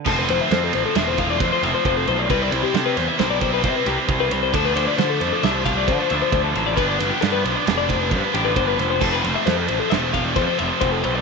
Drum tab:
CC |x---------|----------|----------|----------|
RD |-xxxxxxxxx|xxxxxxxxxx|xxxxxxxxxx|xxxxxxxxxx|
SD |--o-o-oo--|--ooo--o--|--o-oo--oo|-oo-o--o-o|
BD |o----oo-o-|o----oo-o-|o----oo-o-|o----oo-o-|

CC |x---------|
RD |-xxxxxxxxx|
SD |--o-o-o-o-|
BD |o----oo-o-|